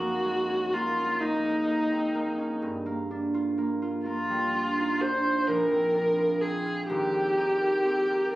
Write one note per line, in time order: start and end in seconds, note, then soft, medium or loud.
0.00 2.66 F#2 soft
0.00 0.24 G#3 soft
0.00 0.72 A#3 soft
0.00 2.66 D#4 soft
0.00 0.75 F#4 medium
0.25 1.43 G#3 soft
0.49 0.96 C#4 soft
0.73 1.19 A#3 soft
0.73 1.22 F4 soft
0.97 2.37 C#4 soft
1.20 1.66 A#3 soft
1.20 2.63 D#4 soft
1.44 2.67 G#3 soft
1.67 2.14 A#3 soft
1.91 2.32 C4 soft
2.15 2.85 A#3 soft
2.38 2.66 C#4 soft
2.62 5.51 G2 soft
2.86 3.57 A#3 soft
3.11 4.53 D4 soft
3.34 3.81 F4 soft
3.58 4.04 A#3 soft
3.82 5.23 F4 soft
4.05 7.95 A#3 soft
4.05 5.02 F4 soft
4.30 5.51 G3 soft
4.54 5.00 D4 soft
4.78 5.18 D#4 soft
5.01 5.93 D4 soft
5.01 5.49 C5 medium
5.24 6.17 F4 soft
5.48 6.93 A#1 soft
5.48 6.43 A#4 medium
5.71 6.41 C4 soft
5.94 6.93 D4 soft
6.18 6.64 F4 soft
6.41 7.12 C4 soft
6.41 6.88 G#4 soft
6.65 6.93 F4 soft
6.89 8.35 G#1 soft
6.89 8.30 G4 medium
7.13 7.84 C4 soft
7.37 8.35 D#4 soft
7.61 8.08 A#4 soft
7.85 8.35 C4 soft
8.09 8.35 A#4 soft